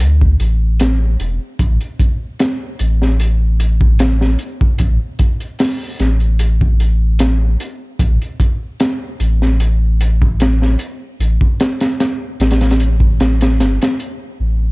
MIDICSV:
0, 0, Header, 1, 3, 480
1, 0, Start_track
1, 0, Tempo, 800000
1, 959, Time_signature, 4, 2, 24, 8
1, 8830, End_track
2, 0, Start_track
2, 0, Title_t, "Sub bass"
2, 0, Program_c, 0, 38
2, 1, Note_on_c, 0, 38, 98
2, 213, Note_off_c, 0, 38, 0
2, 240, Note_on_c, 0, 33, 90
2, 698, Note_off_c, 0, 33, 0
2, 720, Note_on_c, 0, 28, 88
2, 831, Note_off_c, 0, 28, 0
2, 956, Note_on_c, 0, 33, 100
2, 1069, Note_off_c, 0, 33, 0
2, 1680, Note_on_c, 0, 33, 95
2, 2618, Note_off_c, 0, 33, 0
2, 2879, Note_on_c, 0, 33, 99
2, 2990, Note_off_c, 0, 33, 0
2, 3599, Note_on_c, 0, 33, 99
2, 4538, Note_off_c, 0, 33, 0
2, 4796, Note_on_c, 0, 33, 99
2, 4909, Note_off_c, 0, 33, 0
2, 5520, Note_on_c, 0, 33, 100
2, 6458, Note_off_c, 0, 33, 0
2, 6719, Note_on_c, 0, 33, 96
2, 6830, Note_off_c, 0, 33, 0
2, 7439, Note_on_c, 0, 33, 96
2, 7915, Note_off_c, 0, 33, 0
2, 7919, Note_on_c, 0, 33, 88
2, 8160, Note_on_c, 0, 31, 80
2, 8169, Note_off_c, 0, 33, 0
2, 8271, Note_off_c, 0, 31, 0
2, 8639, Note_on_c, 0, 33, 83
2, 8830, Note_off_c, 0, 33, 0
2, 8830, End_track
3, 0, Start_track
3, 0, Title_t, "Drums"
3, 1, Note_on_c, 9, 42, 72
3, 61, Note_off_c, 9, 42, 0
3, 129, Note_on_c, 9, 36, 87
3, 189, Note_off_c, 9, 36, 0
3, 239, Note_on_c, 9, 42, 65
3, 299, Note_off_c, 9, 42, 0
3, 477, Note_on_c, 9, 42, 81
3, 485, Note_on_c, 9, 38, 94
3, 537, Note_off_c, 9, 42, 0
3, 545, Note_off_c, 9, 38, 0
3, 718, Note_on_c, 9, 42, 66
3, 778, Note_off_c, 9, 42, 0
3, 956, Note_on_c, 9, 36, 101
3, 957, Note_on_c, 9, 42, 78
3, 1016, Note_off_c, 9, 36, 0
3, 1017, Note_off_c, 9, 42, 0
3, 1084, Note_on_c, 9, 42, 43
3, 1144, Note_off_c, 9, 42, 0
3, 1197, Note_on_c, 9, 36, 92
3, 1199, Note_on_c, 9, 42, 61
3, 1257, Note_off_c, 9, 36, 0
3, 1259, Note_off_c, 9, 42, 0
3, 1437, Note_on_c, 9, 42, 78
3, 1442, Note_on_c, 9, 38, 110
3, 1497, Note_off_c, 9, 42, 0
3, 1502, Note_off_c, 9, 38, 0
3, 1676, Note_on_c, 9, 42, 65
3, 1736, Note_off_c, 9, 42, 0
3, 1811, Note_on_c, 9, 38, 45
3, 1871, Note_off_c, 9, 38, 0
3, 1918, Note_on_c, 9, 42, 78
3, 1978, Note_off_c, 9, 42, 0
3, 2159, Note_on_c, 9, 42, 68
3, 2219, Note_off_c, 9, 42, 0
3, 2285, Note_on_c, 9, 36, 85
3, 2345, Note_off_c, 9, 36, 0
3, 2395, Note_on_c, 9, 42, 88
3, 2401, Note_on_c, 9, 38, 112
3, 2455, Note_off_c, 9, 42, 0
3, 2461, Note_off_c, 9, 38, 0
3, 2527, Note_on_c, 9, 38, 56
3, 2587, Note_off_c, 9, 38, 0
3, 2634, Note_on_c, 9, 42, 61
3, 2694, Note_off_c, 9, 42, 0
3, 2766, Note_on_c, 9, 36, 103
3, 2826, Note_off_c, 9, 36, 0
3, 2871, Note_on_c, 9, 42, 85
3, 2879, Note_on_c, 9, 36, 99
3, 2931, Note_off_c, 9, 42, 0
3, 2939, Note_off_c, 9, 36, 0
3, 3113, Note_on_c, 9, 42, 64
3, 3117, Note_on_c, 9, 36, 98
3, 3173, Note_off_c, 9, 42, 0
3, 3177, Note_off_c, 9, 36, 0
3, 3242, Note_on_c, 9, 42, 41
3, 3302, Note_off_c, 9, 42, 0
3, 3353, Note_on_c, 9, 46, 76
3, 3361, Note_on_c, 9, 38, 108
3, 3413, Note_off_c, 9, 46, 0
3, 3421, Note_off_c, 9, 38, 0
3, 3598, Note_on_c, 9, 42, 60
3, 3602, Note_on_c, 9, 38, 43
3, 3658, Note_off_c, 9, 42, 0
3, 3662, Note_off_c, 9, 38, 0
3, 3722, Note_on_c, 9, 42, 35
3, 3782, Note_off_c, 9, 42, 0
3, 3835, Note_on_c, 9, 42, 86
3, 3895, Note_off_c, 9, 42, 0
3, 3967, Note_on_c, 9, 36, 83
3, 4027, Note_off_c, 9, 36, 0
3, 4080, Note_on_c, 9, 42, 63
3, 4140, Note_off_c, 9, 42, 0
3, 4315, Note_on_c, 9, 42, 90
3, 4322, Note_on_c, 9, 38, 98
3, 4375, Note_off_c, 9, 42, 0
3, 4382, Note_off_c, 9, 38, 0
3, 4560, Note_on_c, 9, 42, 70
3, 4620, Note_off_c, 9, 42, 0
3, 4796, Note_on_c, 9, 36, 114
3, 4797, Note_on_c, 9, 42, 82
3, 4856, Note_off_c, 9, 36, 0
3, 4857, Note_off_c, 9, 42, 0
3, 4930, Note_on_c, 9, 42, 41
3, 4990, Note_off_c, 9, 42, 0
3, 5038, Note_on_c, 9, 36, 95
3, 5041, Note_on_c, 9, 42, 66
3, 5098, Note_off_c, 9, 36, 0
3, 5101, Note_off_c, 9, 42, 0
3, 5279, Note_on_c, 9, 42, 81
3, 5283, Note_on_c, 9, 38, 106
3, 5339, Note_off_c, 9, 42, 0
3, 5343, Note_off_c, 9, 38, 0
3, 5520, Note_on_c, 9, 42, 67
3, 5580, Note_off_c, 9, 42, 0
3, 5652, Note_on_c, 9, 38, 44
3, 5712, Note_off_c, 9, 38, 0
3, 5761, Note_on_c, 9, 42, 79
3, 5821, Note_off_c, 9, 42, 0
3, 6004, Note_on_c, 9, 42, 70
3, 6064, Note_off_c, 9, 42, 0
3, 6130, Note_on_c, 9, 36, 93
3, 6190, Note_off_c, 9, 36, 0
3, 6240, Note_on_c, 9, 42, 89
3, 6250, Note_on_c, 9, 38, 106
3, 6300, Note_off_c, 9, 42, 0
3, 6310, Note_off_c, 9, 38, 0
3, 6372, Note_on_c, 9, 38, 52
3, 6432, Note_off_c, 9, 38, 0
3, 6474, Note_on_c, 9, 42, 75
3, 6534, Note_off_c, 9, 42, 0
3, 6723, Note_on_c, 9, 42, 60
3, 6783, Note_off_c, 9, 42, 0
3, 6846, Note_on_c, 9, 36, 87
3, 6906, Note_off_c, 9, 36, 0
3, 6959, Note_on_c, 9, 42, 80
3, 6964, Note_on_c, 9, 38, 107
3, 7019, Note_off_c, 9, 42, 0
3, 7024, Note_off_c, 9, 38, 0
3, 7083, Note_on_c, 9, 42, 76
3, 7087, Note_on_c, 9, 38, 90
3, 7143, Note_off_c, 9, 42, 0
3, 7147, Note_off_c, 9, 38, 0
3, 7201, Note_on_c, 9, 42, 76
3, 7202, Note_on_c, 9, 38, 94
3, 7261, Note_off_c, 9, 42, 0
3, 7262, Note_off_c, 9, 38, 0
3, 7440, Note_on_c, 9, 42, 64
3, 7449, Note_on_c, 9, 38, 87
3, 7500, Note_off_c, 9, 42, 0
3, 7504, Note_on_c, 9, 42, 72
3, 7509, Note_off_c, 9, 38, 0
3, 7510, Note_on_c, 9, 38, 91
3, 7564, Note_off_c, 9, 42, 0
3, 7566, Note_on_c, 9, 42, 57
3, 7569, Note_off_c, 9, 38, 0
3, 7569, Note_on_c, 9, 38, 83
3, 7624, Note_off_c, 9, 42, 0
3, 7624, Note_on_c, 9, 42, 67
3, 7628, Note_off_c, 9, 38, 0
3, 7628, Note_on_c, 9, 38, 73
3, 7679, Note_off_c, 9, 42, 0
3, 7679, Note_on_c, 9, 42, 82
3, 7688, Note_off_c, 9, 38, 0
3, 7739, Note_off_c, 9, 42, 0
3, 7802, Note_on_c, 9, 36, 86
3, 7862, Note_off_c, 9, 36, 0
3, 7921, Note_on_c, 9, 42, 71
3, 7924, Note_on_c, 9, 38, 101
3, 7981, Note_off_c, 9, 42, 0
3, 7984, Note_off_c, 9, 38, 0
3, 8045, Note_on_c, 9, 42, 81
3, 8054, Note_on_c, 9, 38, 105
3, 8105, Note_off_c, 9, 42, 0
3, 8114, Note_off_c, 9, 38, 0
3, 8161, Note_on_c, 9, 42, 83
3, 8162, Note_on_c, 9, 38, 88
3, 8221, Note_off_c, 9, 42, 0
3, 8222, Note_off_c, 9, 38, 0
3, 8289, Note_on_c, 9, 42, 78
3, 8296, Note_on_c, 9, 38, 97
3, 8349, Note_off_c, 9, 42, 0
3, 8356, Note_off_c, 9, 38, 0
3, 8398, Note_on_c, 9, 42, 63
3, 8458, Note_off_c, 9, 42, 0
3, 8830, End_track
0, 0, End_of_file